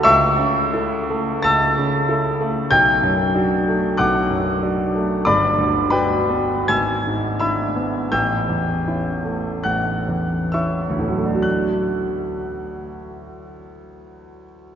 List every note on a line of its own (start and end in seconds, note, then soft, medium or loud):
0.03 1.40 C#2 medium
0.03 1.40 E5 medium
0.03 1.40 C#6 medium
0.03 1.43 E6 loud
0.39 0.93 C#3 soft
0.73 1.05 E4 soft
0.73 1.05 A4 soft
1.10 1.65 A3 soft
1.43 2.67 C#2 medium
1.43 2.67 A5 medium
1.43 2.67 E6 medium
1.43 2.70 A6 loud
1.78 2.27 C#3 medium
2.09 2.37 E4 soft
2.09 2.37 A4 soft
2.41 2.71 A3 soft
2.71 3.95 B1 medium
2.71 3.95 G5 medium
2.71 3.98 G6 loud
3.03 3.54 F#2 soft
3.34 3.63 D4 soft
3.34 3.64 F#4 soft
3.68 4.18 A3 soft
3.97 5.21 B1 medium
3.97 4.90 F#5 medium
3.97 4.89 D6 medium
3.97 4.93 F#6 medium
4.30 4.81 F#2 soft
4.62 4.91 D4 soft
4.62 4.91 F#4 soft
4.95 5.25 A3 soft
5.25 6.66 G1 medium
5.25 5.88 D5 medium
5.25 5.88 B5 medium
5.25 5.91 D6 medium
5.58 6.14 D2 soft
5.90 6.26 D4 soft
5.90 6.26 F#4 soft
5.90 6.65 B4 medium
5.90 6.65 G5 medium
5.90 6.68 B5 medium
6.30 6.69 B3 soft
6.68 8.07 G#1 soft
6.68 7.35 G#5 medium
6.68 7.36 E6 medium
6.68 7.39 G#6 medium
7.07 7.62 G#2 soft
7.40 7.72 D4 soft
7.40 7.72 E4 soft
7.40 8.08 E5 medium
7.40 8.07 B5 medium
7.40 8.11 E6 medium
7.76 8.11 B3 soft
8.12 9.62 A1 medium
8.12 9.62 G5 medium
8.12 9.62 E6 medium
8.12 9.65 G6 medium
8.49 9.09 E2 soft
8.87 9.21 C#4 soft
8.87 9.21 E4 soft
9.24 9.91 A3 soft
9.63 11.40 A1 soft
9.63 10.49 F#5 soft
9.63 10.52 F#6 medium
10.08 10.81 E2 soft
10.52 10.96 C#4 soft
10.52 10.96 E4 soft
10.52 11.41 E5 soft
10.52 11.41 C#6 soft
10.52 11.44 E6 soft
10.90 14.27 D2 soft
10.99 14.36 A2 soft
10.99 11.15 A3 soft
11.08 14.45 F#3 soft
11.17 14.54 A3 soft
11.26 14.63 D4 soft
11.35 14.72 F#4 soft
11.42 14.75 F#6 medium